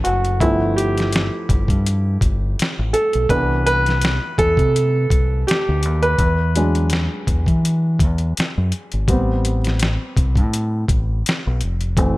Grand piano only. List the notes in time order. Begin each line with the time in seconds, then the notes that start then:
Already playing: A3 B3 A4
0.04 F#4
0.40 F3 A3 B3 E4
0.76 G4
2.93 A4
3.30 E3 B3 D4 B4
3.66 B4
4.39 A4
5.47 G4
6.03 B4
6.56 F#3 G#3 D4
9.08 G3 B3 C4
11.97 E3 A3 C4